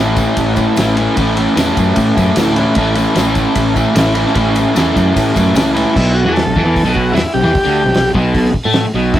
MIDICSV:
0, 0, Header, 1, 7, 480
1, 0, Start_track
1, 0, Tempo, 399202
1, 1404, Time_signature, 4, 2, 24, 8
1, 11057, End_track
2, 0, Start_track
2, 0, Title_t, "Transistor combo organ"
2, 0, Program_c, 0, 18
2, 7136, Note_on_c, 0, 64, 75
2, 7379, Note_on_c, 0, 66, 91
2, 7383, Note_off_c, 0, 64, 0
2, 7560, Note_on_c, 0, 68, 63
2, 7600, Note_off_c, 0, 68, 0
2, 7607, Note_on_c, 0, 69, 90
2, 7625, Note_off_c, 0, 66, 0
2, 8325, Note_off_c, 0, 69, 0
2, 8349, Note_on_c, 0, 66, 82
2, 8556, Note_on_c, 0, 64, 82
2, 8590, Note_off_c, 0, 66, 0
2, 8813, Note_off_c, 0, 64, 0
2, 8821, Note_on_c, 0, 67, 98
2, 9766, Note_off_c, 0, 67, 0
2, 10984, Note_on_c, 0, 64, 97
2, 11057, Note_off_c, 0, 64, 0
2, 11057, End_track
3, 0, Start_track
3, 0, Title_t, "Overdriven electric guitar"
3, 0, Program_c, 1, 29
3, 0, Note_on_c, 1, 45, 91
3, 0, Note_on_c, 1, 52, 95
3, 0, Note_on_c, 1, 57, 93
3, 0, Note_on_c, 1, 61, 97
3, 0, Note_on_c, 1, 64, 103
3, 660, Note_off_c, 1, 64, 0
3, 664, Note_on_c, 1, 64, 75
3, 685, Note_off_c, 1, 61, 0
3, 690, Note_on_c, 1, 61, 63
3, 708, Note_off_c, 1, 57, 0
3, 713, Note_on_c, 1, 57, 66
3, 913, Note_off_c, 1, 52, 0
3, 917, Note_on_c, 1, 52, 73
3, 933, Note_off_c, 1, 57, 0
3, 938, Note_on_c, 1, 57, 83
3, 950, Note_off_c, 1, 61, 0
3, 955, Note_on_c, 1, 61, 89
3, 961, Note_off_c, 1, 64, 0
3, 966, Note_on_c, 1, 64, 86
3, 1161, Note_off_c, 1, 64, 0
3, 1166, Note_on_c, 1, 64, 75
3, 1184, Note_off_c, 1, 61, 0
3, 1189, Note_on_c, 1, 61, 64
3, 1213, Note_off_c, 1, 57, 0
3, 1218, Note_on_c, 1, 57, 57
3, 1391, Note_off_c, 1, 45, 0
3, 1395, Note_on_c, 1, 45, 82
3, 1412, Note_off_c, 1, 52, 0
3, 1417, Note_on_c, 1, 52, 87
3, 1420, Note_off_c, 1, 57, 0
3, 1425, Note_on_c, 1, 57, 93
3, 1440, Note_off_c, 1, 61, 0
3, 1445, Note_on_c, 1, 61, 88
3, 1449, Note_off_c, 1, 64, 0
3, 1454, Note_on_c, 1, 64, 99
3, 1626, Note_off_c, 1, 64, 0
3, 1631, Note_on_c, 1, 64, 72
3, 1652, Note_off_c, 1, 61, 0
3, 1657, Note_on_c, 1, 61, 64
3, 1680, Note_off_c, 1, 57, 0
3, 1685, Note_on_c, 1, 57, 53
3, 1870, Note_off_c, 1, 45, 0
3, 1875, Note_on_c, 1, 45, 103
3, 1882, Note_off_c, 1, 52, 0
3, 1886, Note_on_c, 1, 52, 93
3, 1896, Note_off_c, 1, 57, 0
3, 1901, Note_on_c, 1, 57, 96
3, 1912, Note_off_c, 1, 61, 0
3, 1917, Note_on_c, 1, 61, 101
3, 1923, Note_off_c, 1, 64, 0
3, 1928, Note_on_c, 1, 64, 108
3, 2599, Note_off_c, 1, 64, 0
3, 2604, Note_on_c, 1, 64, 73
3, 2623, Note_off_c, 1, 61, 0
3, 2628, Note_on_c, 1, 61, 65
3, 2647, Note_off_c, 1, 57, 0
3, 2652, Note_on_c, 1, 57, 60
3, 2847, Note_off_c, 1, 52, 0
3, 2851, Note_on_c, 1, 52, 89
3, 2863, Note_off_c, 1, 57, 0
3, 2867, Note_on_c, 1, 57, 78
3, 2883, Note_off_c, 1, 61, 0
3, 2888, Note_on_c, 1, 61, 81
3, 2890, Note_off_c, 1, 64, 0
3, 2895, Note_on_c, 1, 64, 92
3, 3072, Note_off_c, 1, 64, 0
3, 3077, Note_on_c, 1, 64, 74
3, 3105, Note_off_c, 1, 61, 0
3, 3109, Note_on_c, 1, 61, 67
3, 3121, Note_off_c, 1, 57, 0
3, 3126, Note_on_c, 1, 57, 52
3, 3307, Note_off_c, 1, 45, 0
3, 3312, Note_on_c, 1, 45, 90
3, 3323, Note_off_c, 1, 52, 0
3, 3328, Note_on_c, 1, 52, 90
3, 3343, Note_off_c, 1, 57, 0
3, 3348, Note_off_c, 1, 61, 0
3, 3348, Note_on_c, 1, 57, 96
3, 3353, Note_on_c, 1, 61, 83
3, 3362, Note_off_c, 1, 64, 0
3, 3367, Note_on_c, 1, 64, 99
3, 3543, Note_off_c, 1, 64, 0
3, 3548, Note_on_c, 1, 64, 73
3, 3574, Note_off_c, 1, 61, 0
3, 3579, Note_on_c, 1, 61, 60
3, 3593, Note_off_c, 1, 57, 0
3, 3598, Note_on_c, 1, 57, 53
3, 3780, Note_off_c, 1, 45, 0
3, 3784, Note_on_c, 1, 45, 106
3, 3791, Note_off_c, 1, 52, 0
3, 3796, Note_on_c, 1, 52, 107
3, 3801, Note_off_c, 1, 57, 0
3, 3806, Note_on_c, 1, 57, 119
3, 3816, Note_off_c, 1, 61, 0
3, 3820, Note_on_c, 1, 61, 115
3, 3826, Note_off_c, 1, 64, 0
3, 3830, Note_on_c, 1, 64, 117
3, 4484, Note_off_c, 1, 64, 0
3, 4498, Note_on_c, 1, 64, 76
3, 4511, Note_off_c, 1, 61, 0
3, 4525, Note_on_c, 1, 61, 69
3, 4531, Note_off_c, 1, 57, 0
3, 4545, Note_on_c, 1, 57, 62
3, 4731, Note_off_c, 1, 52, 0
3, 4745, Note_on_c, 1, 52, 78
3, 4746, Note_off_c, 1, 57, 0
3, 4754, Note_off_c, 1, 45, 0
3, 4758, Note_off_c, 1, 61, 0
3, 4760, Note_on_c, 1, 57, 84
3, 4772, Note_on_c, 1, 61, 81
3, 4775, Note_off_c, 1, 64, 0
3, 4790, Note_on_c, 1, 64, 89
3, 4970, Note_off_c, 1, 64, 0
3, 4984, Note_on_c, 1, 64, 75
3, 4991, Note_off_c, 1, 61, 0
3, 5006, Note_on_c, 1, 61, 64
3, 5019, Note_off_c, 1, 57, 0
3, 5033, Note_on_c, 1, 57, 52
3, 5206, Note_on_c, 1, 45, 78
3, 5209, Note_off_c, 1, 52, 0
3, 5223, Note_on_c, 1, 52, 91
3, 5224, Note_off_c, 1, 57, 0
3, 5238, Note_off_c, 1, 61, 0
3, 5238, Note_on_c, 1, 57, 88
3, 5249, Note_off_c, 1, 64, 0
3, 5253, Note_on_c, 1, 61, 95
3, 5264, Note_on_c, 1, 64, 94
3, 5463, Note_off_c, 1, 64, 0
3, 5478, Note_on_c, 1, 64, 68
3, 5498, Note_off_c, 1, 61, 0
3, 5512, Note_on_c, 1, 61, 57
3, 5524, Note_off_c, 1, 57, 0
3, 5538, Note_on_c, 1, 57, 54
3, 5700, Note_off_c, 1, 45, 0
3, 5713, Note_off_c, 1, 52, 0
3, 5714, Note_on_c, 1, 45, 104
3, 5719, Note_off_c, 1, 57, 0
3, 5726, Note_on_c, 1, 52, 92
3, 5731, Note_off_c, 1, 61, 0
3, 5733, Note_on_c, 1, 57, 95
3, 5745, Note_on_c, 1, 61, 105
3, 5751, Note_off_c, 1, 64, 0
3, 5765, Note_on_c, 1, 64, 106
3, 6411, Note_off_c, 1, 64, 0
3, 6426, Note_on_c, 1, 64, 71
3, 6445, Note_off_c, 1, 61, 0
3, 6459, Note_on_c, 1, 61, 69
3, 6473, Note_off_c, 1, 57, 0
3, 6487, Note_on_c, 1, 57, 58
3, 6659, Note_off_c, 1, 52, 0
3, 6673, Note_on_c, 1, 52, 81
3, 6678, Note_off_c, 1, 57, 0
3, 6679, Note_off_c, 1, 45, 0
3, 6692, Note_on_c, 1, 57, 77
3, 6697, Note_off_c, 1, 61, 0
3, 6709, Note_off_c, 1, 64, 0
3, 6711, Note_on_c, 1, 61, 82
3, 6723, Note_on_c, 1, 64, 89
3, 6883, Note_off_c, 1, 64, 0
3, 6897, Note_on_c, 1, 64, 75
3, 6913, Note_off_c, 1, 61, 0
3, 6927, Note_on_c, 1, 61, 63
3, 6934, Note_off_c, 1, 57, 0
3, 6948, Note_on_c, 1, 57, 59
3, 7137, Note_off_c, 1, 64, 0
3, 7144, Note_off_c, 1, 52, 0
3, 7151, Note_off_c, 1, 61, 0
3, 7162, Note_off_c, 1, 57, 0
3, 7176, Note_on_c, 1, 47, 90
3, 7522, Note_off_c, 1, 47, 0
3, 7527, Note_on_c, 1, 52, 90
3, 7751, Note_off_c, 1, 52, 0
3, 7756, Note_on_c, 1, 48, 70
3, 7880, Note_off_c, 1, 48, 0
3, 7890, Note_on_c, 1, 52, 112
3, 7977, Note_off_c, 1, 52, 0
3, 7992, Note_on_c, 1, 52, 103
3, 8232, Note_off_c, 1, 52, 0
3, 8238, Note_on_c, 1, 47, 107
3, 8592, Note_off_c, 1, 47, 0
3, 8597, Note_on_c, 1, 52, 120
3, 8712, Note_off_c, 1, 52, 0
3, 8828, Note_on_c, 1, 48, 77
3, 8937, Note_off_c, 1, 48, 0
3, 8942, Note_on_c, 1, 52, 97
3, 9057, Note_off_c, 1, 52, 0
3, 9193, Note_on_c, 1, 50, 109
3, 9430, Note_off_c, 1, 50, 0
3, 9435, Note_on_c, 1, 48, 75
3, 9537, Note_off_c, 1, 48, 0
3, 9551, Note_on_c, 1, 48, 81
3, 9751, Note_off_c, 1, 48, 0
3, 9793, Note_on_c, 1, 47, 120
3, 10274, Note_off_c, 1, 47, 0
3, 10407, Note_on_c, 1, 57, 94
3, 10641, Note_off_c, 1, 57, 0
3, 10766, Note_on_c, 1, 47, 95
3, 11000, Note_off_c, 1, 47, 0
3, 11007, Note_on_c, 1, 43, 99
3, 11057, Note_off_c, 1, 43, 0
3, 11057, End_track
4, 0, Start_track
4, 0, Title_t, "Fingered electric bass"
4, 0, Program_c, 2, 33
4, 0, Note_on_c, 2, 33, 89
4, 307, Note_off_c, 2, 33, 0
4, 451, Note_on_c, 2, 33, 86
4, 794, Note_off_c, 2, 33, 0
4, 932, Note_on_c, 2, 33, 86
4, 1275, Note_off_c, 2, 33, 0
4, 1407, Note_on_c, 2, 33, 99
4, 1751, Note_off_c, 2, 33, 0
4, 1880, Note_on_c, 2, 40, 88
4, 2054, Note_off_c, 2, 40, 0
4, 2131, Note_on_c, 2, 42, 81
4, 2301, Note_off_c, 2, 42, 0
4, 2361, Note_on_c, 2, 45, 92
4, 2535, Note_off_c, 2, 45, 0
4, 2609, Note_on_c, 2, 42, 97
4, 2780, Note_off_c, 2, 42, 0
4, 2847, Note_on_c, 2, 38, 100
4, 3191, Note_off_c, 2, 38, 0
4, 3317, Note_on_c, 2, 33, 92
4, 3665, Note_off_c, 2, 33, 0
4, 3798, Note_on_c, 2, 33, 85
4, 4146, Note_off_c, 2, 33, 0
4, 4276, Note_on_c, 2, 33, 90
4, 4624, Note_off_c, 2, 33, 0
4, 4756, Note_on_c, 2, 33, 99
4, 5104, Note_off_c, 2, 33, 0
4, 5237, Note_on_c, 2, 33, 101
4, 5585, Note_off_c, 2, 33, 0
4, 5728, Note_on_c, 2, 40, 92
4, 5899, Note_off_c, 2, 40, 0
4, 5970, Note_on_c, 2, 42, 85
4, 6141, Note_off_c, 2, 42, 0
4, 6209, Note_on_c, 2, 45, 85
4, 6380, Note_off_c, 2, 45, 0
4, 6440, Note_on_c, 2, 42, 89
4, 6615, Note_off_c, 2, 42, 0
4, 6665, Note_on_c, 2, 37, 78
4, 7018, Note_off_c, 2, 37, 0
4, 7168, Note_on_c, 2, 35, 99
4, 7502, Note_off_c, 2, 35, 0
4, 7511, Note_on_c, 2, 40, 104
4, 7741, Note_off_c, 2, 40, 0
4, 7766, Note_on_c, 2, 35, 76
4, 7877, Note_off_c, 2, 35, 0
4, 7891, Note_on_c, 2, 40, 101
4, 7994, Note_off_c, 2, 40, 0
4, 8001, Note_on_c, 2, 40, 106
4, 8205, Note_off_c, 2, 40, 0
4, 8213, Note_on_c, 2, 35, 91
4, 8563, Note_off_c, 2, 35, 0
4, 8580, Note_on_c, 2, 40, 86
4, 8704, Note_off_c, 2, 40, 0
4, 8833, Note_on_c, 2, 35, 80
4, 8943, Note_off_c, 2, 35, 0
4, 8950, Note_on_c, 2, 40, 98
4, 9069, Note_off_c, 2, 40, 0
4, 9214, Note_on_c, 2, 38, 105
4, 9434, Note_off_c, 2, 38, 0
4, 9450, Note_on_c, 2, 35, 83
4, 9560, Note_off_c, 2, 35, 0
4, 9573, Note_on_c, 2, 35, 76
4, 9789, Note_off_c, 2, 35, 0
4, 9797, Note_on_c, 2, 35, 104
4, 10248, Note_off_c, 2, 35, 0
4, 10403, Note_on_c, 2, 45, 99
4, 10629, Note_off_c, 2, 45, 0
4, 10751, Note_on_c, 2, 35, 95
4, 10982, Note_off_c, 2, 35, 0
4, 10990, Note_on_c, 2, 31, 102
4, 11057, Note_off_c, 2, 31, 0
4, 11057, End_track
5, 0, Start_track
5, 0, Title_t, "Muted fingered electric bass strokes"
5, 8712, Note_on_c, 9, 29, 46
5, 8832, Note_off_c, 9, 29, 0
5, 9078, Note_on_c, 9, 29, 49
5, 9199, Note_off_c, 9, 29, 0
5, 10266, Note_on_c, 9, 29, 44
5, 10387, Note_off_c, 9, 29, 0
5, 10645, Note_on_c, 9, 29, 43
5, 10765, Note_off_c, 9, 29, 0
5, 11057, End_track
6, 0, Start_track
6, 0, Title_t, "Muted overdriven electric guitar strokes"
6, 8717, Note_on_c, 9, 29, 56
6, 8838, Note_off_c, 9, 29, 0
6, 9062, Note_on_c, 9, 29, 56
6, 9182, Note_off_c, 9, 29, 0
6, 10284, Note_on_c, 9, 29, 57
6, 10404, Note_off_c, 9, 29, 0
6, 10655, Note_on_c, 9, 29, 48
6, 10775, Note_off_c, 9, 29, 0
6, 11057, End_track
7, 0, Start_track
7, 0, Title_t, "Drums"
7, 197, Note_on_c, 9, 54, 74
7, 199, Note_on_c, 9, 51, 73
7, 203, Note_on_c, 9, 36, 96
7, 318, Note_off_c, 9, 54, 0
7, 319, Note_off_c, 9, 51, 0
7, 324, Note_off_c, 9, 36, 0
7, 441, Note_on_c, 9, 51, 92
7, 442, Note_on_c, 9, 54, 70
7, 446, Note_on_c, 9, 36, 84
7, 561, Note_off_c, 9, 51, 0
7, 563, Note_off_c, 9, 54, 0
7, 567, Note_off_c, 9, 36, 0
7, 676, Note_on_c, 9, 54, 66
7, 682, Note_on_c, 9, 51, 63
7, 687, Note_on_c, 9, 36, 88
7, 796, Note_off_c, 9, 54, 0
7, 802, Note_off_c, 9, 51, 0
7, 807, Note_off_c, 9, 36, 0
7, 919, Note_on_c, 9, 54, 86
7, 929, Note_on_c, 9, 51, 98
7, 944, Note_on_c, 9, 38, 120
7, 1039, Note_off_c, 9, 54, 0
7, 1049, Note_off_c, 9, 51, 0
7, 1064, Note_off_c, 9, 38, 0
7, 1164, Note_on_c, 9, 51, 62
7, 1171, Note_on_c, 9, 54, 25
7, 1284, Note_off_c, 9, 51, 0
7, 1291, Note_off_c, 9, 54, 0
7, 1405, Note_on_c, 9, 51, 94
7, 1412, Note_on_c, 9, 36, 102
7, 1423, Note_on_c, 9, 54, 24
7, 1525, Note_off_c, 9, 51, 0
7, 1532, Note_off_c, 9, 36, 0
7, 1543, Note_off_c, 9, 54, 0
7, 1645, Note_on_c, 9, 51, 82
7, 1765, Note_off_c, 9, 51, 0
7, 1890, Note_on_c, 9, 51, 94
7, 1894, Note_on_c, 9, 54, 87
7, 1906, Note_on_c, 9, 38, 97
7, 2010, Note_off_c, 9, 51, 0
7, 2014, Note_off_c, 9, 54, 0
7, 2026, Note_off_c, 9, 38, 0
7, 2125, Note_on_c, 9, 54, 67
7, 2129, Note_on_c, 9, 51, 72
7, 2130, Note_on_c, 9, 36, 86
7, 2245, Note_off_c, 9, 54, 0
7, 2249, Note_off_c, 9, 51, 0
7, 2251, Note_off_c, 9, 36, 0
7, 2356, Note_on_c, 9, 51, 102
7, 2367, Note_on_c, 9, 36, 86
7, 2370, Note_on_c, 9, 54, 66
7, 2476, Note_off_c, 9, 51, 0
7, 2488, Note_off_c, 9, 36, 0
7, 2490, Note_off_c, 9, 54, 0
7, 2612, Note_on_c, 9, 36, 79
7, 2614, Note_on_c, 9, 54, 70
7, 2615, Note_on_c, 9, 51, 69
7, 2732, Note_off_c, 9, 36, 0
7, 2734, Note_off_c, 9, 54, 0
7, 2735, Note_off_c, 9, 51, 0
7, 2835, Note_on_c, 9, 51, 110
7, 2851, Note_on_c, 9, 38, 117
7, 2853, Note_on_c, 9, 54, 83
7, 2955, Note_off_c, 9, 51, 0
7, 2971, Note_off_c, 9, 38, 0
7, 2973, Note_off_c, 9, 54, 0
7, 3080, Note_on_c, 9, 51, 64
7, 3104, Note_on_c, 9, 54, 27
7, 3200, Note_off_c, 9, 51, 0
7, 3224, Note_off_c, 9, 54, 0
7, 3307, Note_on_c, 9, 51, 86
7, 3324, Note_on_c, 9, 36, 108
7, 3342, Note_on_c, 9, 54, 21
7, 3427, Note_off_c, 9, 51, 0
7, 3444, Note_off_c, 9, 36, 0
7, 3462, Note_off_c, 9, 54, 0
7, 3551, Note_on_c, 9, 51, 75
7, 3580, Note_on_c, 9, 54, 62
7, 3671, Note_off_c, 9, 51, 0
7, 3700, Note_off_c, 9, 54, 0
7, 3794, Note_on_c, 9, 51, 84
7, 3810, Note_on_c, 9, 38, 118
7, 3814, Note_on_c, 9, 54, 83
7, 3914, Note_off_c, 9, 51, 0
7, 3930, Note_off_c, 9, 38, 0
7, 3935, Note_off_c, 9, 54, 0
7, 4029, Note_on_c, 9, 51, 68
7, 4039, Note_on_c, 9, 36, 90
7, 4042, Note_on_c, 9, 54, 61
7, 4149, Note_off_c, 9, 51, 0
7, 4159, Note_off_c, 9, 36, 0
7, 4163, Note_off_c, 9, 54, 0
7, 4274, Note_on_c, 9, 51, 96
7, 4280, Note_on_c, 9, 36, 86
7, 4285, Note_on_c, 9, 54, 63
7, 4394, Note_off_c, 9, 51, 0
7, 4400, Note_off_c, 9, 36, 0
7, 4405, Note_off_c, 9, 54, 0
7, 4520, Note_on_c, 9, 54, 65
7, 4521, Note_on_c, 9, 36, 81
7, 4528, Note_on_c, 9, 51, 63
7, 4640, Note_off_c, 9, 54, 0
7, 4642, Note_off_c, 9, 36, 0
7, 4648, Note_off_c, 9, 51, 0
7, 4756, Note_on_c, 9, 51, 101
7, 4764, Note_on_c, 9, 54, 84
7, 4771, Note_on_c, 9, 38, 115
7, 4876, Note_off_c, 9, 51, 0
7, 4884, Note_off_c, 9, 54, 0
7, 4892, Note_off_c, 9, 38, 0
7, 4990, Note_on_c, 9, 51, 67
7, 4999, Note_on_c, 9, 54, 28
7, 5111, Note_off_c, 9, 51, 0
7, 5119, Note_off_c, 9, 54, 0
7, 5133, Note_on_c, 9, 38, 32
7, 5234, Note_on_c, 9, 51, 87
7, 5236, Note_on_c, 9, 54, 25
7, 5238, Note_on_c, 9, 36, 98
7, 5253, Note_off_c, 9, 38, 0
7, 5355, Note_off_c, 9, 51, 0
7, 5356, Note_off_c, 9, 54, 0
7, 5358, Note_off_c, 9, 36, 0
7, 5473, Note_on_c, 9, 54, 65
7, 5480, Note_on_c, 9, 51, 75
7, 5593, Note_off_c, 9, 54, 0
7, 5601, Note_off_c, 9, 51, 0
7, 5722, Note_on_c, 9, 54, 94
7, 5727, Note_on_c, 9, 51, 85
7, 5743, Note_on_c, 9, 38, 103
7, 5843, Note_off_c, 9, 54, 0
7, 5847, Note_off_c, 9, 51, 0
7, 5863, Note_off_c, 9, 38, 0
7, 5966, Note_on_c, 9, 36, 92
7, 5969, Note_on_c, 9, 51, 73
7, 5972, Note_on_c, 9, 54, 73
7, 6086, Note_off_c, 9, 36, 0
7, 6089, Note_off_c, 9, 51, 0
7, 6092, Note_off_c, 9, 54, 0
7, 6208, Note_on_c, 9, 36, 98
7, 6209, Note_on_c, 9, 54, 73
7, 6212, Note_on_c, 9, 51, 112
7, 6328, Note_off_c, 9, 36, 0
7, 6329, Note_off_c, 9, 54, 0
7, 6332, Note_off_c, 9, 51, 0
7, 6444, Note_on_c, 9, 54, 84
7, 6446, Note_on_c, 9, 36, 88
7, 6456, Note_on_c, 9, 51, 78
7, 6564, Note_off_c, 9, 54, 0
7, 6566, Note_off_c, 9, 36, 0
7, 6576, Note_off_c, 9, 51, 0
7, 6679, Note_on_c, 9, 54, 86
7, 6689, Note_on_c, 9, 51, 106
7, 6705, Note_on_c, 9, 38, 119
7, 6799, Note_off_c, 9, 54, 0
7, 6809, Note_off_c, 9, 51, 0
7, 6825, Note_off_c, 9, 38, 0
7, 6915, Note_on_c, 9, 54, 34
7, 6931, Note_on_c, 9, 51, 73
7, 7036, Note_off_c, 9, 54, 0
7, 7052, Note_off_c, 9, 51, 0
7, 7167, Note_on_c, 9, 36, 122
7, 7171, Note_on_c, 9, 49, 117
7, 7287, Note_off_c, 9, 36, 0
7, 7291, Note_off_c, 9, 49, 0
7, 7647, Note_on_c, 9, 46, 51
7, 7663, Note_on_c, 9, 38, 102
7, 7767, Note_off_c, 9, 46, 0
7, 7783, Note_off_c, 9, 38, 0
7, 7889, Note_on_c, 9, 36, 91
7, 8009, Note_off_c, 9, 36, 0
7, 8128, Note_on_c, 9, 36, 94
7, 8131, Note_on_c, 9, 46, 61
7, 8248, Note_off_c, 9, 36, 0
7, 8251, Note_off_c, 9, 46, 0
7, 8367, Note_on_c, 9, 36, 78
7, 8488, Note_off_c, 9, 36, 0
7, 8612, Note_on_c, 9, 46, 67
7, 8628, Note_on_c, 9, 38, 118
7, 8733, Note_off_c, 9, 46, 0
7, 8748, Note_off_c, 9, 38, 0
7, 9076, Note_on_c, 9, 46, 57
7, 9081, Note_on_c, 9, 36, 116
7, 9196, Note_off_c, 9, 46, 0
7, 9201, Note_off_c, 9, 36, 0
7, 9552, Note_on_c, 9, 46, 61
7, 9568, Note_on_c, 9, 38, 109
7, 9672, Note_off_c, 9, 46, 0
7, 9688, Note_off_c, 9, 38, 0
7, 9794, Note_on_c, 9, 36, 92
7, 9915, Note_off_c, 9, 36, 0
7, 10036, Note_on_c, 9, 36, 96
7, 10036, Note_on_c, 9, 46, 68
7, 10156, Note_off_c, 9, 36, 0
7, 10156, Note_off_c, 9, 46, 0
7, 10161, Note_on_c, 9, 38, 27
7, 10271, Note_on_c, 9, 36, 84
7, 10281, Note_off_c, 9, 38, 0
7, 10391, Note_off_c, 9, 36, 0
7, 10495, Note_on_c, 9, 46, 60
7, 10510, Note_on_c, 9, 38, 127
7, 10615, Note_off_c, 9, 46, 0
7, 10631, Note_off_c, 9, 38, 0
7, 10987, Note_on_c, 9, 46, 63
7, 10990, Note_on_c, 9, 36, 115
7, 11057, Note_off_c, 9, 36, 0
7, 11057, Note_off_c, 9, 46, 0
7, 11057, End_track
0, 0, End_of_file